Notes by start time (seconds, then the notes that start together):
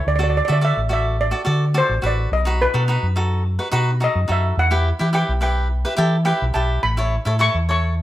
0.07 D2 D5
0.16 F#4 A4 D5
0.20 D5
0.30 D5
0.37 D5
0.45 F#4 A4 D5
0.49 D3 D5 E5
0.61 F#4 A4 D5 E5
0.77 A1
0.89 F#4 A4 D5 E5
1.21 D5
1.31 F#4 A4 D5
1.45 D3 F#4 A4 D5
1.74 F#4 A4 C5 D5
1.89 A1
2.02 A1 F#4 A4 B4
2.06 D5
2.31 B1 D#5
2.45 D#4 F#4 B4
2.62 B4
2.74 B2 D#4 F#4 A4
2.88 D#4 F#4 B4
3.03 F#2
3.16 D#4 F#4 A4
3.59 D#4 F#4 B4
3.72 B2 D#4 F#4 B4
4.00 D#4 F#4 A4 D#5
4.15 F#2
4.28 F#2 D#4 F#4 A4
4.32 E5
4.57 E2 F#5
4.71 E4 G4 B4
4.99 E3 E4 G4 B4
5.13 E4 G4 B4 G5
5.29 B1
5.41 E4 G4 B4 G5
5.85 E4 G4 B4
5.97 E3 E4 G4 A4
6.25 E4 G4 B4 G5
6.42 B1
6.54 B1 E4 G4 B4 A5
6.83 A1 B5
6.97 E4 A4 C#5
7.25 A2 E4 A4 C#5
7.39 E4 A4 C#5 C#6
7.54 E2
7.69 E4 A4 C#5 C#6